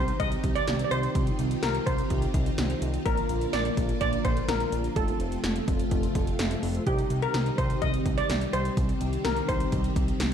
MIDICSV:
0, 0, Header, 1, 6, 480
1, 0, Start_track
1, 0, Tempo, 476190
1, 1161, Time_signature, 4, 2, 24, 8
1, 10420, End_track
2, 0, Start_track
2, 0, Title_t, "Steel pan"
2, 0, Program_c, 0, 114
2, 0, Note_on_c, 0, 72, 99
2, 199, Note_on_c, 0, 75, 112
2, 207, Note_off_c, 0, 72, 0
2, 559, Note_on_c, 0, 74, 105
2, 571, Note_off_c, 0, 75, 0
2, 829, Note_off_c, 0, 74, 0
2, 851, Note_on_c, 0, 74, 74
2, 919, Note_on_c, 0, 72, 102
2, 921, Note_off_c, 0, 74, 0
2, 1640, Note_on_c, 0, 70, 93
2, 1662, Note_off_c, 0, 72, 0
2, 1879, Note_on_c, 0, 72, 88
2, 1888, Note_off_c, 0, 70, 0
2, 2800, Note_off_c, 0, 72, 0
2, 3080, Note_on_c, 0, 70, 95
2, 3527, Note_off_c, 0, 70, 0
2, 3559, Note_on_c, 0, 74, 106
2, 4007, Note_off_c, 0, 74, 0
2, 4040, Note_on_c, 0, 74, 115
2, 4264, Note_off_c, 0, 74, 0
2, 4281, Note_on_c, 0, 72, 94
2, 4521, Note_on_c, 0, 70, 94
2, 4528, Note_off_c, 0, 72, 0
2, 5002, Note_on_c, 0, 69, 85
2, 5015, Note_off_c, 0, 70, 0
2, 6641, Note_off_c, 0, 69, 0
2, 6924, Note_on_c, 0, 67, 88
2, 7283, Note_on_c, 0, 70, 92
2, 7293, Note_off_c, 0, 67, 0
2, 7642, Note_on_c, 0, 72, 100
2, 7653, Note_off_c, 0, 70, 0
2, 7881, Note_on_c, 0, 75, 111
2, 7889, Note_off_c, 0, 72, 0
2, 8242, Note_on_c, 0, 74, 105
2, 8252, Note_off_c, 0, 75, 0
2, 8601, Note_on_c, 0, 72, 100
2, 8612, Note_off_c, 0, 74, 0
2, 9320, Note_on_c, 0, 70, 94
2, 9342, Note_off_c, 0, 72, 0
2, 9544, Note_off_c, 0, 70, 0
2, 9561, Note_on_c, 0, 72, 90
2, 10420, Note_off_c, 0, 72, 0
2, 10420, End_track
3, 0, Start_track
3, 0, Title_t, "Analog polysynth"
3, 0, Program_c, 1, 90
3, 0, Note_on_c, 1, 60, 68
3, 0, Note_on_c, 1, 63, 62
3, 0, Note_on_c, 1, 67, 78
3, 3041, Note_off_c, 1, 60, 0
3, 3041, Note_off_c, 1, 63, 0
3, 3041, Note_off_c, 1, 67, 0
3, 3080, Note_on_c, 1, 65, 62
3, 3081, Note_on_c, 1, 58, 68
3, 3081, Note_on_c, 1, 62, 63
3, 3081, Note_on_c, 1, 70, 77
3, 4962, Note_off_c, 1, 58, 0
3, 4962, Note_off_c, 1, 62, 0
3, 4962, Note_off_c, 1, 65, 0
3, 4962, Note_off_c, 1, 70, 0
3, 5001, Note_on_c, 1, 57, 70
3, 5001, Note_on_c, 1, 60, 62
3, 5001, Note_on_c, 1, 65, 62
3, 5001, Note_on_c, 1, 69, 76
3, 6882, Note_off_c, 1, 65, 0
3, 6882, Note_off_c, 1, 69, 0
3, 6883, Note_off_c, 1, 57, 0
3, 6883, Note_off_c, 1, 60, 0
3, 6921, Note_on_c, 1, 60, 69
3, 6922, Note_on_c, 1, 63, 63
3, 6922, Note_on_c, 1, 67, 75
3, 10420, Note_off_c, 1, 60, 0
3, 10420, Note_off_c, 1, 63, 0
3, 10420, Note_off_c, 1, 67, 0
3, 10420, End_track
4, 0, Start_track
4, 0, Title_t, "String machine"
4, 0, Program_c, 2, 50
4, 0, Note_on_c, 2, 51, 84
4, 0, Note_on_c, 2, 60, 75
4, 0, Note_on_c, 2, 63, 73
4, 0, Note_on_c, 2, 67, 88
4, 1142, Note_off_c, 2, 67, 0
4, 1162, Note_on_c, 2, 65, 90
4, 3043, Note_off_c, 2, 51, 0
4, 3043, Note_off_c, 2, 60, 0
4, 3043, Note_off_c, 2, 63, 0
4, 3062, Note_off_c, 2, 65, 0
4, 3080, Note_on_c, 2, 50, 81
4, 3080, Note_on_c, 2, 53, 75
4, 3080, Note_on_c, 2, 58, 74
4, 3080, Note_on_c, 2, 65, 91
4, 4981, Note_off_c, 2, 50, 0
4, 4981, Note_off_c, 2, 58, 0
4, 4981, Note_off_c, 2, 65, 0
4, 5000, Note_on_c, 2, 48, 85
4, 5000, Note_on_c, 2, 57, 72
4, 5000, Note_on_c, 2, 65, 91
4, 6882, Note_off_c, 2, 53, 0
4, 6901, Note_off_c, 2, 57, 0
4, 6901, Note_off_c, 2, 65, 0
4, 6921, Note_on_c, 2, 51, 74
4, 6921, Note_on_c, 2, 55, 76
4, 6922, Note_on_c, 2, 63, 92
4, 8822, Note_off_c, 2, 63, 0
4, 8842, Note_on_c, 2, 60, 90
4, 10420, Note_off_c, 2, 48, 0
4, 10420, Note_off_c, 2, 51, 0
4, 10420, Note_off_c, 2, 55, 0
4, 10420, Note_off_c, 2, 60, 0
4, 10420, End_track
5, 0, Start_track
5, 0, Title_t, "Analog synth bass"
5, 0, Program_c, 3, 38
5, 0, Note_on_c, 3, 36, 97
5, 130, Note_off_c, 3, 36, 0
5, 201, Note_on_c, 3, 36, 104
5, 369, Note_off_c, 3, 36, 0
5, 440, Note_on_c, 3, 36, 104
5, 608, Note_off_c, 3, 36, 0
5, 682, Note_on_c, 3, 36, 105
5, 849, Note_off_c, 3, 36, 0
5, 921, Note_on_c, 3, 36, 106
5, 1089, Note_off_c, 3, 36, 0
5, 1161, Note_on_c, 3, 36, 112
5, 1329, Note_off_c, 3, 36, 0
5, 1401, Note_on_c, 3, 36, 97
5, 1569, Note_off_c, 3, 36, 0
5, 1641, Note_on_c, 3, 36, 99
5, 1809, Note_off_c, 3, 36, 0
5, 1883, Note_on_c, 3, 36, 101
5, 2050, Note_off_c, 3, 36, 0
5, 2121, Note_on_c, 3, 36, 102
5, 2289, Note_off_c, 3, 36, 0
5, 2360, Note_on_c, 3, 36, 100
5, 2528, Note_off_c, 3, 36, 0
5, 2601, Note_on_c, 3, 36, 98
5, 2769, Note_off_c, 3, 36, 0
5, 2841, Note_on_c, 3, 36, 100
5, 3009, Note_off_c, 3, 36, 0
5, 3081, Note_on_c, 3, 34, 115
5, 3249, Note_off_c, 3, 34, 0
5, 3322, Note_on_c, 3, 34, 103
5, 3489, Note_off_c, 3, 34, 0
5, 3562, Note_on_c, 3, 34, 103
5, 3729, Note_off_c, 3, 34, 0
5, 3803, Note_on_c, 3, 34, 106
5, 3971, Note_off_c, 3, 34, 0
5, 4042, Note_on_c, 3, 34, 98
5, 4209, Note_off_c, 3, 34, 0
5, 4280, Note_on_c, 3, 34, 97
5, 4449, Note_off_c, 3, 34, 0
5, 4521, Note_on_c, 3, 34, 102
5, 4689, Note_off_c, 3, 34, 0
5, 4762, Note_on_c, 3, 34, 104
5, 4929, Note_off_c, 3, 34, 0
5, 5001, Note_on_c, 3, 29, 114
5, 5169, Note_off_c, 3, 29, 0
5, 5241, Note_on_c, 3, 29, 107
5, 5409, Note_off_c, 3, 29, 0
5, 5482, Note_on_c, 3, 29, 113
5, 5649, Note_off_c, 3, 29, 0
5, 5724, Note_on_c, 3, 29, 99
5, 5891, Note_off_c, 3, 29, 0
5, 5962, Note_on_c, 3, 29, 105
5, 6129, Note_off_c, 3, 29, 0
5, 6201, Note_on_c, 3, 29, 107
5, 6369, Note_off_c, 3, 29, 0
5, 6441, Note_on_c, 3, 29, 105
5, 6609, Note_off_c, 3, 29, 0
5, 6681, Note_on_c, 3, 29, 105
5, 6849, Note_off_c, 3, 29, 0
5, 6921, Note_on_c, 3, 36, 105
5, 7089, Note_off_c, 3, 36, 0
5, 7161, Note_on_c, 3, 36, 96
5, 7329, Note_off_c, 3, 36, 0
5, 7400, Note_on_c, 3, 36, 108
5, 7568, Note_off_c, 3, 36, 0
5, 7644, Note_on_c, 3, 36, 100
5, 7811, Note_off_c, 3, 36, 0
5, 7882, Note_on_c, 3, 36, 102
5, 8049, Note_off_c, 3, 36, 0
5, 8121, Note_on_c, 3, 36, 100
5, 8289, Note_off_c, 3, 36, 0
5, 8361, Note_on_c, 3, 36, 104
5, 8529, Note_off_c, 3, 36, 0
5, 8601, Note_on_c, 3, 36, 101
5, 8769, Note_off_c, 3, 36, 0
5, 8842, Note_on_c, 3, 36, 117
5, 9009, Note_off_c, 3, 36, 0
5, 9081, Note_on_c, 3, 36, 99
5, 9249, Note_off_c, 3, 36, 0
5, 9321, Note_on_c, 3, 36, 99
5, 9489, Note_off_c, 3, 36, 0
5, 9563, Note_on_c, 3, 36, 101
5, 9731, Note_off_c, 3, 36, 0
5, 9802, Note_on_c, 3, 36, 102
5, 9969, Note_off_c, 3, 36, 0
5, 10041, Note_on_c, 3, 36, 102
5, 10209, Note_off_c, 3, 36, 0
5, 10281, Note_on_c, 3, 36, 101
5, 10420, Note_off_c, 3, 36, 0
5, 10420, End_track
6, 0, Start_track
6, 0, Title_t, "Drums"
6, 80, Note_on_c, 9, 42, 50
6, 181, Note_off_c, 9, 42, 0
6, 199, Note_on_c, 9, 42, 66
6, 201, Note_on_c, 9, 36, 90
6, 300, Note_off_c, 9, 42, 0
6, 302, Note_off_c, 9, 36, 0
6, 320, Note_on_c, 9, 42, 55
6, 421, Note_off_c, 9, 42, 0
6, 440, Note_on_c, 9, 36, 96
6, 440, Note_on_c, 9, 42, 74
6, 541, Note_off_c, 9, 36, 0
6, 541, Note_off_c, 9, 42, 0
6, 563, Note_on_c, 9, 42, 53
6, 663, Note_off_c, 9, 42, 0
6, 680, Note_on_c, 9, 42, 84
6, 681, Note_on_c, 9, 38, 117
6, 781, Note_off_c, 9, 42, 0
6, 782, Note_off_c, 9, 38, 0
6, 800, Note_on_c, 9, 42, 57
6, 901, Note_off_c, 9, 42, 0
6, 922, Note_on_c, 9, 42, 78
6, 1022, Note_off_c, 9, 42, 0
6, 1041, Note_on_c, 9, 42, 49
6, 1142, Note_off_c, 9, 42, 0
6, 1160, Note_on_c, 9, 42, 74
6, 1161, Note_on_c, 9, 36, 114
6, 1261, Note_off_c, 9, 42, 0
6, 1262, Note_off_c, 9, 36, 0
6, 1280, Note_on_c, 9, 42, 49
6, 1381, Note_off_c, 9, 42, 0
6, 1399, Note_on_c, 9, 42, 68
6, 1500, Note_off_c, 9, 42, 0
6, 1522, Note_on_c, 9, 42, 58
6, 1623, Note_off_c, 9, 42, 0
6, 1640, Note_on_c, 9, 38, 123
6, 1642, Note_on_c, 9, 42, 75
6, 1740, Note_off_c, 9, 38, 0
6, 1743, Note_off_c, 9, 42, 0
6, 1760, Note_on_c, 9, 42, 53
6, 1861, Note_off_c, 9, 42, 0
6, 1882, Note_on_c, 9, 42, 72
6, 1883, Note_on_c, 9, 36, 96
6, 1983, Note_off_c, 9, 42, 0
6, 1984, Note_off_c, 9, 36, 0
6, 2000, Note_on_c, 9, 42, 50
6, 2101, Note_off_c, 9, 42, 0
6, 2120, Note_on_c, 9, 42, 69
6, 2121, Note_on_c, 9, 36, 93
6, 2220, Note_off_c, 9, 42, 0
6, 2222, Note_off_c, 9, 36, 0
6, 2239, Note_on_c, 9, 42, 54
6, 2340, Note_off_c, 9, 42, 0
6, 2360, Note_on_c, 9, 36, 96
6, 2360, Note_on_c, 9, 42, 72
6, 2461, Note_off_c, 9, 36, 0
6, 2461, Note_off_c, 9, 42, 0
6, 2482, Note_on_c, 9, 42, 55
6, 2583, Note_off_c, 9, 42, 0
6, 2600, Note_on_c, 9, 42, 83
6, 2602, Note_on_c, 9, 38, 120
6, 2701, Note_off_c, 9, 42, 0
6, 2702, Note_off_c, 9, 38, 0
6, 2720, Note_on_c, 9, 42, 58
6, 2821, Note_off_c, 9, 42, 0
6, 2842, Note_on_c, 9, 42, 77
6, 2942, Note_off_c, 9, 42, 0
6, 2960, Note_on_c, 9, 42, 49
6, 3061, Note_off_c, 9, 42, 0
6, 3081, Note_on_c, 9, 36, 112
6, 3081, Note_on_c, 9, 42, 74
6, 3181, Note_off_c, 9, 42, 0
6, 3182, Note_off_c, 9, 36, 0
6, 3201, Note_on_c, 9, 42, 52
6, 3301, Note_off_c, 9, 42, 0
6, 3319, Note_on_c, 9, 42, 70
6, 3420, Note_off_c, 9, 42, 0
6, 3442, Note_on_c, 9, 42, 56
6, 3543, Note_off_c, 9, 42, 0
6, 3560, Note_on_c, 9, 38, 121
6, 3562, Note_on_c, 9, 42, 74
6, 3660, Note_off_c, 9, 38, 0
6, 3663, Note_off_c, 9, 42, 0
6, 3681, Note_on_c, 9, 42, 54
6, 3781, Note_off_c, 9, 42, 0
6, 3803, Note_on_c, 9, 36, 96
6, 3803, Note_on_c, 9, 42, 69
6, 3904, Note_off_c, 9, 36, 0
6, 3904, Note_off_c, 9, 42, 0
6, 3920, Note_on_c, 9, 42, 52
6, 4021, Note_off_c, 9, 42, 0
6, 4040, Note_on_c, 9, 42, 69
6, 4041, Note_on_c, 9, 36, 92
6, 4141, Note_off_c, 9, 42, 0
6, 4142, Note_off_c, 9, 36, 0
6, 4160, Note_on_c, 9, 42, 53
6, 4261, Note_off_c, 9, 42, 0
6, 4280, Note_on_c, 9, 36, 96
6, 4281, Note_on_c, 9, 42, 72
6, 4381, Note_off_c, 9, 36, 0
6, 4381, Note_off_c, 9, 42, 0
6, 4403, Note_on_c, 9, 42, 55
6, 4504, Note_off_c, 9, 42, 0
6, 4520, Note_on_c, 9, 42, 82
6, 4522, Note_on_c, 9, 38, 118
6, 4621, Note_off_c, 9, 42, 0
6, 4622, Note_off_c, 9, 38, 0
6, 4641, Note_on_c, 9, 42, 58
6, 4741, Note_off_c, 9, 42, 0
6, 4762, Note_on_c, 9, 42, 78
6, 4863, Note_off_c, 9, 42, 0
6, 4881, Note_on_c, 9, 42, 49
6, 4982, Note_off_c, 9, 42, 0
6, 5001, Note_on_c, 9, 36, 117
6, 5001, Note_on_c, 9, 42, 72
6, 5102, Note_off_c, 9, 36, 0
6, 5102, Note_off_c, 9, 42, 0
6, 5121, Note_on_c, 9, 42, 50
6, 5222, Note_off_c, 9, 42, 0
6, 5240, Note_on_c, 9, 42, 69
6, 5341, Note_off_c, 9, 42, 0
6, 5362, Note_on_c, 9, 42, 57
6, 5463, Note_off_c, 9, 42, 0
6, 5480, Note_on_c, 9, 38, 125
6, 5482, Note_on_c, 9, 42, 74
6, 5581, Note_off_c, 9, 38, 0
6, 5583, Note_off_c, 9, 42, 0
6, 5602, Note_on_c, 9, 42, 54
6, 5702, Note_off_c, 9, 42, 0
6, 5724, Note_on_c, 9, 36, 96
6, 5724, Note_on_c, 9, 42, 70
6, 5824, Note_off_c, 9, 36, 0
6, 5824, Note_off_c, 9, 42, 0
6, 5841, Note_on_c, 9, 42, 50
6, 5942, Note_off_c, 9, 42, 0
6, 5960, Note_on_c, 9, 42, 68
6, 5962, Note_on_c, 9, 36, 90
6, 6061, Note_off_c, 9, 42, 0
6, 6062, Note_off_c, 9, 36, 0
6, 6080, Note_on_c, 9, 42, 54
6, 6181, Note_off_c, 9, 42, 0
6, 6201, Note_on_c, 9, 36, 97
6, 6201, Note_on_c, 9, 42, 72
6, 6302, Note_off_c, 9, 36, 0
6, 6302, Note_off_c, 9, 42, 0
6, 6323, Note_on_c, 9, 42, 53
6, 6424, Note_off_c, 9, 42, 0
6, 6441, Note_on_c, 9, 42, 83
6, 6442, Note_on_c, 9, 38, 123
6, 6542, Note_off_c, 9, 42, 0
6, 6543, Note_off_c, 9, 38, 0
6, 6560, Note_on_c, 9, 42, 57
6, 6661, Note_off_c, 9, 42, 0
6, 6682, Note_on_c, 9, 46, 80
6, 6783, Note_off_c, 9, 46, 0
6, 6801, Note_on_c, 9, 42, 50
6, 6902, Note_off_c, 9, 42, 0
6, 6921, Note_on_c, 9, 36, 110
6, 6921, Note_on_c, 9, 42, 73
6, 7022, Note_off_c, 9, 36, 0
6, 7022, Note_off_c, 9, 42, 0
6, 7041, Note_on_c, 9, 42, 50
6, 7142, Note_off_c, 9, 42, 0
6, 7159, Note_on_c, 9, 42, 68
6, 7260, Note_off_c, 9, 42, 0
6, 7282, Note_on_c, 9, 42, 56
6, 7383, Note_off_c, 9, 42, 0
6, 7400, Note_on_c, 9, 38, 121
6, 7402, Note_on_c, 9, 42, 74
6, 7501, Note_off_c, 9, 38, 0
6, 7503, Note_off_c, 9, 42, 0
6, 7521, Note_on_c, 9, 42, 53
6, 7622, Note_off_c, 9, 42, 0
6, 7643, Note_on_c, 9, 42, 70
6, 7644, Note_on_c, 9, 36, 97
6, 7744, Note_off_c, 9, 36, 0
6, 7744, Note_off_c, 9, 42, 0
6, 7761, Note_on_c, 9, 42, 53
6, 7862, Note_off_c, 9, 42, 0
6, 7880, Note_on_c, 9, 42, 67
6, 7882, Note_on_c, 9, 36, 89
6, 7981, Note_off_c, 9, 42, 0
6, 7982, Note_off_c, 9, 36, 0
6, 8000, Note_on_c, 9, 42, 56
6, 8101, Note_off_c, 9, 42, 0
6, 8121, Note_on_c, 9, 36, 95
6, 8121, Note_on_c, 9, 42, 71
6, 8222, Note_off_c, 9, 36, 0
6, 8222, Note_off_c, 9, 42, 0
6, 8244, Note_on_c, 9, 42, 54
6, 8345, Note_off_c, 9, 42, 0
6, 8361, Note_on_c, 9, 42, 84
6, 8363, Note_on_c, 9, 38, 123
6, 8462, Note_off_c, 9, 42, 0
6, 8464, Note_off_c, 9, 38, 0
6, 8481, Note_on_c, 9, 42, 57
6, 8582, Note_off_c, 9, 42, 0
6, 8602, Note_on_c, 9, 42, 77
6, 8703, Note_off_c, 9, 42, 0
6, 8721, Note_on_c, 9, 42, 51
6, 8822, Note_off_c, 9, 42, 0
6, 8841, Note_on_c, 9, 36, 113
6, 8841, Note_on_c, 9, 42, 75
6, 8942, Note_off_c, 9, 36, 0
6, 8942, Note_off_c, 9, 42, 0
6, 8961, Note_on_c, 9, 42, 48
6, 9062, Note_off_c, 9, 42, 0
6, 9079, Note_on_c, 9, 42, 68
6, 9180, Note_off_c, 9, 42, 0
6, 9202, Note_on_c, 9, 42, 55
6, 9303, Note_off_c, 9, 42, 0
6, 9320, Note_on_c, 9, 38, 120
6, 9322, Note_on_c, 9, 42, 74
6, 9421, Note_off_c, 9, 38, 0
6, 9423, Note_off_c, 9, 42, 0
6, 9440, Note_on_c, 9, 42, 55
6, 9541, Note_off_c, 9, 42, 0
6, 9563, Note_on_c, 9, 36, 98
6, 9563, Note_on_c, 9, 42, 72
6, 9664, Note_off_c, 9, 36, 0
6, 9664, Note_off_c, 9, 42, 0
6, 9681, Note_on_c, 9, 42, 52
6, 9781, Note_off_c, 9, 42, 0
6, 9800, Note_on_c, 9, 42, 65
6, 9802, Note_on_c, 9, 36, 90
6, 9901, Note_off_c, 9, 42, 0
6, 9902, Note_off_c, 9, 36, 0
6, 9921, Note_on_c, 9, 42, 53
6, 10021, Note_off_c, 9, 42, 0
6, 10041, Note_on_c, 9, 36, 96
6, 10041, Note_on_c, 9, 42, 74
6, 10142, Note_off_c, 9, 36, 0
6, 10142, Note_off_c, 9, 42, 0
6, 10163, Note_on_c, 9, 42, 54
6, 10264, Note_off_c, 9, 42, 0
6, 10280, Note_on_c, 9, 42, 84
6, 10282, Note_on_c, 9, 38, 116
6, 10381, Note_off_c, 9, 42, 0
6, 10383, Note_off_c, 9, 38, 0
6, 10420, End_track
0, 0, End_of_file